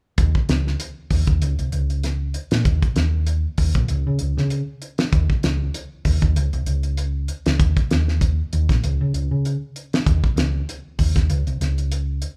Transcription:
0.18 D#2, kick, closed hi-hat
0.35 kick
0.49 C#2, snare, closed hi-hat
0.67 snare
0.80 closed hi-hat
1.10 D#2, kick, open hi-hat
1.27 D#2, kick, closed hi-hat
1.42 C#2, closed hi-hat
1.59 C2, closed hi-hat
1.72 C#2, closed hi-hat
1.90 closed hi-hat
2.04 snare, closed hi-hat
2.34 closed hi-hat
2.51 A#2, snare, closed hi-hat
2.65 D#2, kick, closed hi-hat
2.82 kick, closed hi-hat
2.96 D#2, snare, closed hi-hat
3.27 closed hi-hat
3.58 D#2, kick, open hi-hat
3.75 A#1, kick, closed hi-hat
3.88 C#2, closed hi-hat
4.07 C#3
4.19 C#2, closed hi-hat
4.37 C#3, snare
4.50 closed hi-hat
4.82 closed hi-hat
4.98 snare, closed hi-hat
5.12 D#2, kick, closed hi-hat
5.30 kick
5.43 C#2, snare, closed hi-hat
5.74 closed hi-hat
6.05 D#2, kick, open hi-hat
6.22 D#2, kick, closed hi-hat
6.36 C#2, closed hi-hat
6.53 C2, closed hi-hat
6.66 C#2, closed hi-hat
6.83 closed hi-hat
6.97 closed hi-hat
7.28 closed hi-hat
7.46 C#2, snare, closed hi-hat
7.59 D#2, kick, closed hi-hat
7.77 kick, closed hi-hat
7.91 D#2, snare, closed hi-hat
8.08 snare
8.21 kick, closed hi-hat
8.53 D#2, closed hi-hat
8.69 A#1, kick, snare, closed hi-hat
8.84 C#2, closed hi-hat
9.01 C#3
9.14 C#2, closed hi-hat
9.31 C#3
9.45 closed hi-hat
9.76 closed hi-hat
9.93 snare, closed hi-hat
10.06 D#2, kick, closed hi-hat
10.24 kick
10.36 C#2, snare, closed hi-hat
10.69 closed hi-hat
10.99 D#2, kick, open hi-hat
11.16 D#2, kick, snare, closed hi-hat
11.30 C#2, closed hi-hat
11.47 C2, closed hi-hat
11.61 C#2, snare, closed hi-hat
11.78 closed hi-hat
11.92 closed hi-hat
12.22 closed hi-hat

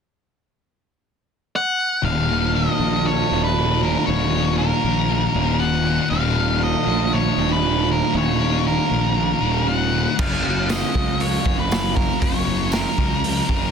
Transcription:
1.56 F#5
2.02 D#1 D#2 A#2 D#3 F#3 A#3 D#4 F5
2.29 A#2 D#3
2.54 D#2 A#2 D#3 D#5
2.79 A#1 A#2 D#3
3.04 D#2 A#2 D#3 C#5
3.30 D#1 A#2 D#3
3.44 B4
3.56 D#2 A#2 D#3
3.81 A#2 D#3 A#4
4.05 D#1 D#2 A#2 D#3 C#5
4.33 A#2 D#3
4.58 D#2 A#2 D#3 A#4
4.84 A#1 A#2 D#3
5.10 D#2 A#2 D#3
5.35 D#1 A#2 D#3
5.60 D#2 A#2 D#3 F#5
5.86 A#2 D#3
6.10 D#1 D#2 A#2 F#3 A#3 D#4 F5
6.14 D#3
6.37 A#2 D#3
6.62 D#2 A#2 D#3 D#5
6.87 A#1 A#2 D#3
7.11 D#2 A#2 D#3 C#5
7.37 D#1 A#2 D#3
7.52 B4
7.63 D#2 A#2 D#3
7.89 A#2 D#3 A#4
8.14 D#1 D#2 A#2 D#3 C#5
8.39 A#2 D#3
8.65 D#2 A#2 D#3 A#4
8.90 A#1 A#2 D#3
9.15 D#2 A#2 D#3
9.41 D#1 A#2 D#3
9.66 D#2 A#2 D#3 F#5
9.93 A#2 D#3
10.18 F#1 F#2 C#3 F#3 A#3 C#4 F#4 F5, kick, crash
10.33 snare
10.44 C#3 F#3
10.69 F#2 C#3 F#3 D#5, snare, open hi-hat, tambourine
10.93 C#2 C#3 F#3, kick
11.20 F#2 C#3 F#3 C#5, open hi-hat
11.44 F#1 C#3 F#3, kick
11.59 B4
11.70 F#2 C#3 F#3, snare, open hi-hat, tambourine
11.96 C#3 F#3 A#4, kick
12.21 F#1 F#2 C#3 F#3 C#5, kick, open hi-hat
12.46 C#3 F#3
12.71 F#2 C#3 F#3 A#4, snare, open hi-hat, tambourine
12.97 C#2 C#3 F#3, kick
13.21 F#2 C#3 F#3, open hi-hat
13.47 F#1 C#3 F#3, kick

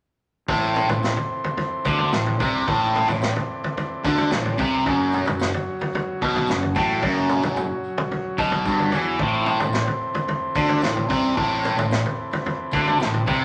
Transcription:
0.48 A1 A2 E3 C4 A4 C5, kick, floor tom
0.75 mid tom, tambourine
0.89 A1 A2, floor tom, mid tom, tambourine
1.03 snare, tambourine
1.17 floor tom, tambourine
1.44 floor tom, tambourine
1.57 floor tom, tambourine
1.85 D2 D3, kick, floor tom, tambourine
1.98 floor tom
2.12 A1 A2, snare, tambourine
2.26 floor tom
2.40 C2 C3, kick, floor tom, tambourine
2.67 A1 A2 D5, kick, floor tom
2.95 mid tom, tambourine
3.08 A1 A2, floor tom, mid tom, tambourine
3.22 snare, tambourine
3.36 floor tom
3.64 floor tom, tambourine
3.77 floor tom, tambourine
4.04 D2 D3, kick, floor tom, tambourine
4.18 floor tom
4.31 A1 A2, snare, tambourine
4.45 floor tom
4.58 C2 C3, kick, floor tom, tambourine
4.85 F#1 F#2 C#3 F#3 F#4 C#5, kick, floor tom
5.12 mid tom, tambourine
5.25 F#1 F#2, floor tom, mid tom, tambourine
5.39 snare, tambourine
5.52 floor tom, tambourine
5.79 floor tom, tambourine
5.93 floor tom, tambourine
6.22 B1 B2, kick, floor tom
6.36 floor tom
6.47 F#1 F#2, snare, tambourine
6.63 floor tom
6.75 A1 A2, kick, floor tom, tambourine
7.02 F#1 F#2, kick, floor tom, tambourine
7.16 tambourine
7.29 mid tom, tambourine
7.42 F#1 F#2, floor tom, mid tom, tambourine
7.56 mid tom, tambourine
7.84 tambourine
7.97 floor tom, mid tom, tambourine
8.11 floor tom, tambourine
8.38 B1 B2, kick, floor tom, tambourine
8.52 floor tom
8.65 G1 G2, kick, tambourine
8.79 floor tom, tambourine
8.92 E2 E3, floor tom, tambourine
9.19 A1 A2 E3 C4 A4 C5, kick, floor tom
9.46 mid tom, tambourine
9.60 A1 A2, floor tom, mid tom, tambourine
9.73 snare, tambourine
9.87 floor tom
10.14 floor tom, tambourine
10.27 floor tom, tambourine
10.55 D2 D3, kick, floor tom, tambourine
10.69 floor tom
10.82 A1 A2, snare, tambourine
10.97 floor tom
11.09 C2 C3, kick, floor tom, tambourine
11.36 A1 A2 B4, kick, floor tom
11.63 mid tom, tambourine
11.78 A1 A2, floor tom, mid tom, tambourine
11.91 snare, tambourine
12.05 floor tom, tambourine
12.31 floor tom, tambourine
12.45 floor tom, tambourine
12.71 D2 D3, kick, floor tom, tambourine
12.87 floor tom
13.00 A1 A2, snare, tambourine
13.14 floor tom
13.26 C2 C3, kick, floor tom, tambourine

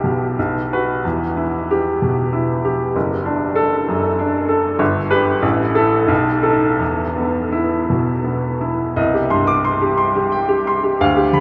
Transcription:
Already playing: B1 E4 G4
0.04 B2
0.39 B1
0.72 F#4 B4
1.05 E2
1.37 E4
1.71 G4
2.02 B2
2.33 E4
2.65 G4
2.96 F#1
3.25 D4
3.56 A4
3.88 F#2
4.19 D4
4.49 A4
4.79 G1
5.11 G4 B4
5.42 A1
5.75 E4 A4
6.08 B1
6.42 D#4 A4
6.79 E2
7.16 B3
7.52 E4
7.90 B2
8.24 B3
8.61 E4
8.96 C2 D#5
9.14 G4
9.30 G2 C6
9.47 D6
9.65 C6
9.82 G4
9.98 C6
10.16 G4
10.32 G5
10.49 G4
10.67 C6
10.83 G4
11.01 D2 F5
11.17 G4
11.33 D3 B5

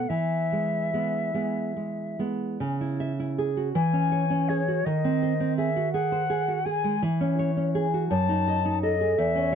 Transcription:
Already playing: F#5
0.09 E3 E5
0.52 G#3
0.94 G#3 B3
1.34 G#3 B3
1.76 G#3
2.19 G#3 B3
2.60 C#3
2.81 E4
3.00 E5
3.20 E4
3.38 G#4
3.57 F#4
3.75 E3 G#5
3.93 C#4
4.12 C#5
4.30 C#4
4.49 G#4 C#5
4.68 F#4
4.85 D#3 D#5
5.05 C4
5.23 C5
5.40 C4
5.57 G#4 E5
5.76 F#4
5.93 G#4 F#5
6.12 C5
6.30 G#4
6.48 F#4
6.65 G#4 G#5
6.84 G#3
7.02 E3
7.21 C#4
7.39 C#5
7.57 C#4
7.75 G#4
7.94 F#4
8.10 F#2 A5
8.29 D#4
8.48 D#5
8.65 D#4
8.82 A4 D#5
9.01 G#4
9.18 E2 E5
9.35 C#4

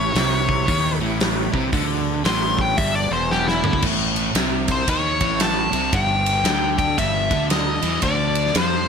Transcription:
Already playing: A1 A2 E4 G4 B4 C#5
0.14 C2 C3, snare, open hi-hat
0.49 kick
0.67 D#2 D#3, kick, open hi-hat
0.99 A1 A2
1.20 snare, open hi-hat
1.54 C2 C3, kick
1.73 D2 D3 B3 F#4 G#4 D5, kick, open hi-hat
2.24 A1 A2 C6, snare, open hi-hat
2.58 G5, kick
2.77 G1 G2 E5, kick, open hi-hat
2.95 D5
3.11 E1 E2 C5
3.31 G4, snare
3.47 E4, snare
3.62 D2 D3, mid tom
3.73 kick
3.82 A1 A2, kick, crash
4.16 ride
4.35 C2 C3, snare, ride
4.68 C5, kick, ride
4.87 D#2 D#3 C#5, kick, ride
5.21 A1 A2, kick, ride
5.40 A5, snare, ride
5.73 C2 C3, ride
5.93 G1 G2 G5, kick, ride
6.26 ride
6.44 D2 D3, snare, ride
6.78 G5, kick, ride
6.98 G1 G2 E5, kick, ride
7.30 D2 D3, kick, ride
7.50 D#5, snare, ride
7.82 E2 E3, ride
8.02 D2 D3 D5, kick, ride
8.35 ride
8.46 snare
8.55 F2 F3 C5, snare, ride

